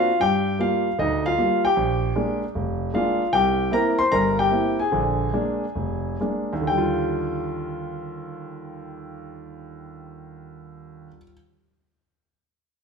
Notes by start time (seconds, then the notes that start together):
Already playing: F4 F5
0.20 G2 G4 G5
0.59 G3 A#3 F4 F5
0.99 D2 D#4 D#5
1.26 F4 F5
1.38 G3 A#3 F4
1.65 G4 G5
1.77 A#1
2.16 G#3 A#3 D4
2.55 F1
2.94 G#3 A#3 D4 F4 F5
3.33 C2 G4 G5
3.71 A#3 C4 E4 A#4 A#5
3.99 C5 C6
4.12 G1 G2 A#4 A#5
4.39 G4 G5
4.51 A#3 C4 E4
4.79 G#4 G#5
4.92 A#1 D3
5.33 G#3 A#3 D4
5.75 F1
6.20 G#3 A#3 D4
6.53 D#2
6.61 D3
6.67 G3 G5
6.78 F4